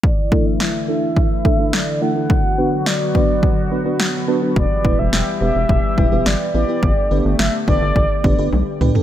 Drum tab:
SD |----o-------o---|----o-------o---|----o-------o---|----o-----------|
T1 |----------------|----------------|----------------|------------o---|
T2 |----------------|----------------|----------------|--------------o-|
FT |----------------|----------------|----------------|---------------o|
BD |o-o-----o-o-----|o-----o-o-------|o-o-----o-o-----|o-----o-o-o-----|